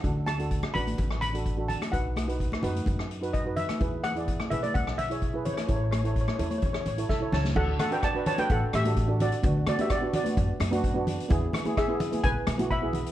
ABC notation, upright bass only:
X:1
M:4/4
L:1/16
Q:1/4=128
K:D
V:1 name="Upright bass" clef=bass
D,,6 A,,,2 A,,,8 | B,,,6 F,,2 F,,8 | E,,6 B,,,2 B,,,8 | A,,,6 E,,2 E,,2 A,,,2 B,,,2 C,,2 |
D,,2 z6 A,,, z A,,,6 | D,,2 z6 F,, z F,,6 | E,,2 z6 B,,, z B,,,6 |]